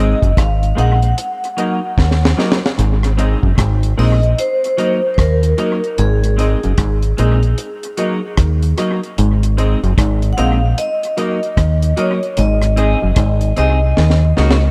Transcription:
Already playing: G#1 G#3 C4 D#4 G#4 C5 D#5
0.22 F#1 F#2, kick, closed hi-hat
0.37 G#1 G#2 F5, kick, cross-stick, closed hi-hat
0.63 closed hi-hat
0.75 A#1 A#2 G#3 C4 D#4 G#4 C5 D#5 F#5, closed hi-hat
1.02 C5 D#5, closed hi-hat
1.18 closed hi-hat
1.44 closed hi-hat
1.57 F#3 A#3 D#4 F#4 A#4 D#5, closed hi-hat
1.98 D#2 D#3, kick, snare
2.11 snare
2.25 snare
2.37 F#3 A#3 D#4 F#4 A#4 D#5, snare
2.52 snare
2.66 snare
2.78 G#1 G#2, closed hi-hat
3.03 cross-stick, closed hi-hat
3.17 G#3 C4 D#4 G#4 C5 D#5, closed hi-hat
3.43 F#1 F#2, kick
3.58 G#1 G#2, kick, cross-stick, closed hi-hat
3.83 closed hi-hat
3.98 A#1 A#2 G#3 C4 D#4 G#4 C5 D#5, open hi-hat
4.23 C5 D#5, closed hi-hat
4.38 C5, closed hi-hat
4.64 closed hi-hat
4.77 F#3 A#3 D#4 F#4 A#4 D#5, closed hi-hat
5.14 C5, kick
5.18 D#2 D#3 A#4, cross-stick, closed hi-hat
5.43 closed hi-hat
5.57 F#3 A#3 D#4 F#4 A#4 D#5, closed hi-hat
5.84 closed hi-hat
5.98 G#1 G#2 G#4, closed hi-hat
6.24 closed hi-hat
6.37 G#3 C4 D#4 G#4 C5 D#5, closed hi-hat
6.63 F#1 F#2, closed hi-hat
6.78 G#1 G#2, kick, cross-stick, closed hi-hat
7.03 closed hi-hat
7.17 A#1 A#2 G#3 C4 D#4 G#4 C5 D#5, closed hi-hat
7.43 C5 D#5, closed hi-hat
7.58 closed hi-hat
7.83 closed hi-hat
7.97 F#3 A#3 D#4 F#4 A#4 D#5, closed hi-hat
8.37 D#2 D#3, kick, cross-stick, closed hi-hat
8.63 closed hi-hat
8.77 F#3 A#3 D#4 F#4 A#4 D#5, cross-stick, closed hi-hat
9.03 closed hi-hat
9.18 G#1 G#2, closed hi-hat
9.43 closed hi-hat
9.57 G#3 C4 D#4 G#4 C5 D#5, closed hi-hat
9.83 F#1 F#2, closed hi-hat
9.98 G#1 G#2, kick, cross-stick, closed hi-hat
10.22 closed hi-hat
10.33 F#5
10.37 A#1 A#2 G#3 C4 D#4 G#4 C5 D#5 F5, closed hi-hat
10.63 C5 D#5
10.78 D#5, closed hi-hat
11.03 closed hi-hat
11.17 F#3 A#3 D#4 F#4 A#4 D#5, closed hi-hat
11.43 closed hi-hat
11.57 D#2 D#3, kick, cross-stick, closed hi-hat
11.82 closed hi-hat
11.97 F#3 A#3 D#4 F#4 A#4 C#5 D#5, closed hi-hat
12.23 closed hi-hat
12.37 G#1 G#2 D#5, closed hi-hat
12.62 cross-stick, closed hi-hat
12.76 C4 D#4 G#4 C5 D#5, closed hi-hat
13.02 F#1 F#2
13.16 G#1 G#2, kick, cross-stick, closed hi-hat
13.41 closed hi-hat
13.56 C2 C3 C4 D#4 G#4 C5 D#5, closed hi-hat
13.82 C5 D#5
13.97 D#2 D#3, snare
14.10 snare
14.36 C#2 C#3 A#3 D#4 F#4 A#4 D#5, snare
14.51 snare

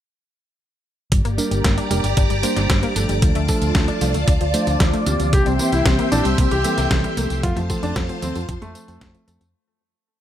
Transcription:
1.12 G1 G3 G4 D5 A#5 D6, kick, closed hi-hat, tambourine
1.25 G1 A#3, closed hi-hat, tambourine
1.38 G3 A#3 D4 A#4, tambourine
1.51 G1 G3, closed hi-hat, tambourine
1.64 G1 A#3, kick, snare, closed hi-hat, tambourine
1.78 D4, closed hi-hat, tambourine
1.91 F1 G3 A#3 D4 A#4, closed hi-hat, tambourine
2.04 G1 A#3, closed hi-hat, tambourine
2.17 G1 D4, kick, closed hi-hat, tambourine
2.30 G1 G3, closed hi-hat, tambourine
2.43 G3 A#3 D4 C5, closed hi-hat, tambourine
2.56 G1 D4, snare, closed hi-hat, tambourine
2.70 G1 G3, kick, snare, closed hi-hat, tambourine
2.83 A#3, closed hi-hat, tambourine
2.96 G1 F3 A3 D4 A4, closed hi-hat, tambourine
3.09 G1 G3, closed hi-hat, tambourine
3.22 D2 F3 F4 D5 A5, kick, closed hi-hat, tambourine
3.35 D2 A3, closed hi-hat, tambourine
3.48 F3 A3 D4 A4, kick, tambourine
3.62 D2 F3, closed hi-hat, tambourine
3.75 D2 A3, kick, snare, closed hi-hat, tambourine
3.88 D4, closed hi-hat, tambourine
4.01 C2 F3 A3 D4 A4, closed hi-hat, tambourine
4.14 D2 A3, closed hi-hat, tambourine
4.28 D2 D4, kick, closed hi-hat, tambourine
4.41 D2 F3, closed hi-hat, tambourine
4.54 F3 A3 D4 C5, closed hi-hat, tambourine
4.67 D2 D4, closed hi-hat, tambourine
4.80 D2 F3, kick, snare, closed hi-hat, tambourine
4.93 A3, closed hi-hat, tambourine
5.06 D2 E3 A#3 C4 D4 G4, closed hi-hat, tambourine
5.20 D2 F3, closed hi-hat, tambourine
5.33 C2 E3 G4 E5 G5 C6, kick, closed hi-hat, tambourine
5.46 C2 G3 C4, closed hi-hat, tambourine
5.59 E3 A#3 C4 G4, tambourine
5.72 C2 E3 E4, closed hi-hat, tambourine
5.86 C2 G3 C4, kick, snare, closed hi-hat, tambourine
5.99 A#3 C4, closed hi-hat, tambourine
6.12 A#1 E3 A#3 C4 D4 G4, closed hi-hat, tambourine
6.25 C2 G3 C4, closed hi-hat, tambourine
6.38 C2 A#3 C4, kick, closed hi-hat, tambourine
6.51 C2 E3 G4, closed hi-hat, tambourine
6.64 E3 G3 A#3 C4 A4, closed hi-hat, tambourine
6.78 C2 A#3, snare, closed hi-hat, tambourine
6.91 C2 E3, kick, snare, closed hi-hat, tambourine
7.04 G3, closed hi-hat, tambourine
7.17 C2 F3 A3 A#3 C4 A4, closed hi-hat, tambourine
7.30 C2 E3, closed hi-hat, tambourine
7.43 F2 F3 F4 C5 A5 C6, kick, closed hi-hat, tambourine
7.57 F2 F3 A3, closed hi-hat, tambourine
7.70 F3 A3 C4 A4, kick, tambourine
7.83 F2 F3 D4, closed hi-hat, tambourine
7.96 F2 F3 A3, kick, snare, closed hi-hat, tambourine
8.09 F3 C4, closed hi-hat, tambourine
8.22 D#2 F3 A3 C4 A4, closed hi-hat, tambourine
8.36 F2 F3 A3, closed hi-hat, tambourine
8.49 F2 F3 C4, kick, closed hi-hat, tambourine
8.62 F2 F3 A3, closed hi-hat, tambourine
8.75 F3 A3 C4 A4, closed hi-hat, tambourine
8.88 F2 F3 A3 C4 A4, closed hi-hat, tambourine
9.01 A3, kick, snare, closed hi-hat, tambourine
9.14 F3, closed hi-hat, tambourine
9.28 F2 F3 A3 C4 A4, closed hi-hat, tambourine
9.41 F2 F3, closed hi-hat, tambourine

